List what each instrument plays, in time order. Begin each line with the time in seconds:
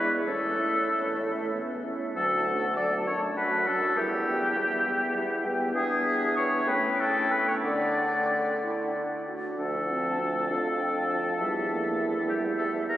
Already playing: bassoon E2, french horn G#3, clarinet E4, flute E5
0.27 bassoon A2, french horn E3, clarinet C#4, oboe A4, flute C#5
0.59 french horn A3, clarinet E4, flute E5
0.90 french horn E3, clarinet C#4, flute C#5
1.21 french horn A3, clarinet E4, flute E5
1.52 french horn B3, clarinet C#4, flute C#5
1.84 french horn C#4, clarinet E4, flute E5
2.15 bassoon D2, french horn F#3, clarinet D4, oboe A4, flute A5
2.46 french horn A3, clarinet F#4, flute F#5
2.76 french horn F#3, clarinet D4, oboe D5, flute A5
3.07 bassoon F#2, french horn F#3, clarinet D4, oboe C#5, flute A5
3.37 french horn A3, clarinet F#4, oboe B4, flute F#5
3.67 french horn F#3, clarinet D4, oboe A4, flute A5
3.97 bassoon E2, french horn G3, clarinet E4, oboe G4, flute E5
4.28 french horn B3, clarinet G4, flute G5
4.56 french horn G3, clarinet E4, flute E5
4.86 french horn B3, clarinet G4, flute G5
5.15 french horn G3, clarinet E4, flute E5
5.45 french horn B3, clarinet G4, flute G5
5.74 bassoon E2, french horn B3, clarinet D4, oboe G#4, flute E5
6.37 oboe C#5
6.67 bassoon A2, french horn A3, clarinet C#4, oboe B4, flute G5
7.00 oboe A4
7.31 oboe B4
7.48 oboe C#5
7.62 bassoon D3, french horn A3, clarinet D4, oboe D5, flute F#5
8.62 clarinet E4
8.95 clarinet D4
9.27 clarinet F#4
9.58 bassoon D2, french horn F3, clarinet D4, oboe A4, flute A5
9.88 clarinet C4
10.19 clarinet D4
10.48 bassoon F2, french horn F3, clarinet D4, flute F5
10.79 flute G5
11.10 flute A5
11.40 bassoon E2, french horn G3, clarinet E4, flute E5
11.72 french horn A#3
12.02 french horn A3
12.29 french horn G3, oboe G4
12.58 oboe A4
12.89 oboe A#4